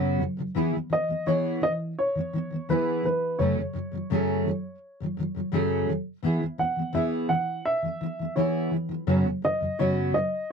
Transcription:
Already playing: F#2 C#3 F#3 B3 C#4 F#4
0.20 F#2 C#3 F#3
0.37 F#2 C#3 F#3
0.55 E3 B3 E4 G#4
0.73 E3 B3
0.90 E3 B3 D#5
1.08 E3 B3
1.26 E3 B3 E4 G#4 C#5
1.61 E3 B3 D#5
1.99 C#5
2.15 E3 B3
2.33 E3 B3
2.51 E3 B3
2.69 E3 B3 E4 G#4 B4
3.04 E3 B3 B4
3.39 F#2 C#3 F#3 A3 C#4 G#4 C#5
3.56 F#2 C#3 F#3
3.73 F#2 C#3 F#3
3.92 F#2 C#3 F#3
4.10 F#2 C#3 F#3 A3 C#4 G#4
4.46 F#2 C#3 F#3
5.00 F#2 C#3 F#3
5.17 F#2 C#3 F#3
5.35 F#2 C#3 F#3
5.52 F#2 C#3 F#3 A3 C#4 G#4
5.87 F#2 C#3 F#3
6.22 E3 B3 E4 G#4
6.40 E3 B3
6.58 E3 B3 F#5
6.76 E3 B3
6.93 E3 B3 E4 G#4 E5
7.29 E3 B3 F#5
7.65 E5
7.82 E3 B3
8.01 E3 B3
8.19 E3 B3
8.36 E3 B3 E4 G#4 C#5
8.71 E3 B3
8.89 E3 B3
9.07 F#2 C#3 F#3 B3 C#4 F#4
9.25 F#2 C#3 F#3
9.42 F#2 C#3 F#3 D#5
9.61 F#2 C#3 F#3
9.79 F#2 C#3 F#3 B3 C#4 F#4 C#5
10.14 F#2 C#3 F#3 D#5

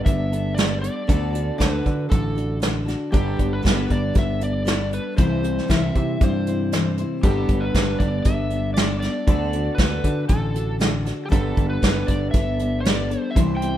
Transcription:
Already playing: G3 B3 D4 A4
0.05 G1 G3 B3 D4 A4 E5, kick, closed hi-hat
0.32 B3 D4 A4, closed hi-hat
0.55 G3 D4 D5, snare, closed hi-hat
0.59 B3 A4
0.81 B3 D4 A4 D5, closed hi-hat
1.07 D2 D3 D4 F#4 A4, kick, closed hi-hat
1.33 D4 F#4 A4, closed hi-hat
1.58 D2 D3 D4 F#4 A4 B4, kick, snare, closed hi-hat
1.83 D3 D4 F#4 A4, kick, closed hi-hat
2.09 A1 D3 D4 F#4 A4, kick, closed hi-hat
2.35 D4 F#4 A4, closed hi-hat
2.60 D3 D4 F#4 A4, snare, closed hi-hat
2.86 D4 F#4 A4, snare, closed hi-hat
3.12 G1 G3 B3 D4 G4 A4, kick, closed hi-hat
3.37 G1 B3 D4 A4, kick, closed hi-hat
3.53 B4
3.62 G1 G3 B3 D4 A4, kick, closed hi-hat
3.66 snare
3.88 G1 B3 D4 A4 D5, kick, closed hi-hat
4.14 G1 G3 B3 D4 A4, kick, closed hi-hat
4.19 E5
4.40 B3 D4 A4 D5, closed hi-hat
4.65 G3 B3 D4 A4, snare, closed hi-hat
4.91 B3 D4 A4 B4, closed hi-hat
5.17 C2 C3 E3 G3 C4 E4 C5, kick, closed hi-hat
5.43 G3 C4 E4 C5, closed hi-hat
5.58 snare
5.68 C2 C3 E3 G3 C4 E4 C5 E5, kick, snare, closed hi-hat
5.95 C3 G3 C4 E4 C5, kick, closed hi-hat
6.21 G2 G3 C4 E4 C5, kick, closed hi-hat
6.47 G3 C4 E4 C5, closed hi-hat
6.72 C3 E3 G3 C4 E4 C5, snare, closed hi-hat
6.97 C4 E4 C5, closed hi-hat
7.02 G3
7.23 G1 G3 B3 D4 G4 A4, kick, closed hi-hat
7.48 G1 A4, kick, closed hi-hat
7.53 B3 D4
7.60 B4
7.74 G1 G3 B3 D4 A4, kick, snare, closed hi-hat
7.98 G1 B3 A4 D5, kick, closed hi-hat
8.03 D4
8.22 G1 E5, kick, closed hi-hat
8.27 G3 B3 D4 A4
8.50 B3 A4, closed hi-hat
8.55 D4
8.74 G3 D5, snare, closed hi-hat
8.78 B3 D4 A4
9.00 D5, snare, closed hi-hat
9.04 B3 D4 A4
9.27 D2 D3 D4 F#4 A4, kick, closed hi-hat
9.53 D4 F#4 A4, closed hi-hat
9.75 D2 B4, kick, closed hi-hat
9.79 D3 D4 F#4 A4, snare
10.04 D3 D4 F#4 A4, kick, closed hi-hat
10.28 A1 D3 D4 F#4 A4, kick, closed hi-hat
10.54 D4 F#4 A4, closed hi-hat
10.79 D3 D4 F#4 A4, snare, closed hi-hat
11.05 D4 F#4 A4, snare, closed hi-hat
11.26 G3 D4 G4
11.30 G1 B3 A4, kick, closed hi-hat
11.55 G1 B3 D4 A4, kick, closed hi-hat
11.70 B4
11.82 G1 G3 B3 D4 A4, kick, snare, closed hi-hat
12.07 G1 B3 D4 A4 D5, kick, closed hi-hat
12.31 G1 G3 D4 E5, kick, closed hi-hat
12.36 B3 A4
12.59 B3 D4 A4, closed hi-hat
12.81 D5
12.85 G3 B3 D4 A4, snare, closed hi-hat
13.10 B3 D4 A4, closed hi-hat
13.31 E5
13.36 C2 C3 E3 G3 C4 E4 C5, kick, closed hi-hat
13.57 G5
13.62 G3 C4 E4 C5, closed hi-hat

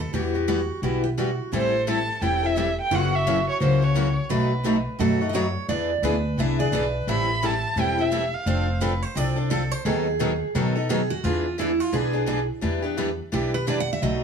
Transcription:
0.00 A4
0.14 E2 E3 G3 B3 F#4 G4
0.34 G3 B3 F#4
0.48 E3 G3 B3 F#4
0.82 B1 E3 G3 B3 E4 F#4
1.04 G4
1.18 E3 G3 B3 F#4
1.53 A1 E3 G3 C4 E4 A4
1.57 C5
1.87 E3 G3 C4 E4 A4 A5
2.22 E1 E3 G3 C4 E4 A4 G5
2.43 C4 E4 A4 E5
2.57 E3 G3 C4 E4 A4
2.81 G5
2.91 F#1 C#3 E3 F#3 A#3 C#4 E4 F#4 A#4
2.95 F#5
3.15 E5
3.27 C#3 E3 F#3 A#3 C#4 E4 F#4 A#4
3.50 C#5
3.60 C#2 C#3 E3 F#3 A#3 C#4 E4 F#4 A#4 C5
3.82 A#3 C#4 F#4 C#5
3.95 C#3 E3 F#3 A#3 C#4 E4 F#4 A#4
4.30 B1 B2 F#3 A3 D#4 F#4 B4
4.65 B2 F#3 A3 D#4 F#4 B4
4.99 F#2 B2 F#3 A3 D#4 F#4 A4 B4
5.21 A3 D#4 F#4
5.29 D#5
5.34 B2 F#3 A3 D#4 F#4 B4 C#5
5.69 E2 E3 B3 D4 G#4 B4 D5
6.02 D2 E3 B3 D4 G#4 B4
6.37 C2 E3 B3 D4 G#4 B4 E5
6.59 B3 D4 G#4 D5
6.72 B1 E3 B3 D4 G#4 B4
7.07 A1 E3 G3 C4 E4 A4 E5 B5
7.42 E3 G3 C4 E4 A4 A5
7.76 E1 E3 G3 C4 E4 A4
7.81 G5
7.98 C4 E4 A4 E5
8.12 E3 G3 C4 E4 A4
8.34 F5
8.46 F1 F3 C4 D4 A4 C5
8.81 F3 C4 D4 A4 B4
9.02 C5
9.16 C2 F3 C4 D4 A4 D5
9.36 C4 D4 A4
9.50 F3 C4 D4 A4
9.71 C5
9.85 D#2 D#3 F#3 B3 D#4 G#4 A4
10.20 D#3 F#3 B3 D#4 A4
10.55 B2 D#3 F#3 B3 D#4 A4
10.76 B3 D#4 A4
10.89 D#3 F#3 B3 D#4 G#4 A4
11.10 F#4
11.24 E2 E3 B3 D4 F4 G#4 B4
11.58 E3 B3 D4 E4 G#4 B4
11.80 F4
11.92 B1 E3 B3 D4 G#4 B4
12.13 B3 D4 G#4
12.26 E3 B3 D4 G#4 B4
12.61 E2 E3 G3 B3 D4 E4 G4 B4
12.82 B3 D4 G4
12.97 E3 G3 B3 D4 E4 G4 B4
13.32 B1 E3 G3 B3 D4 E4 G4 B4
13.54 B4
13.67 E3 G3 B3 D4 E4 G4 B4 D5
13.80 F#5
13.93 E5
14.02 B1 B2 F#3 A3 D#4 F#4 B4 D#5

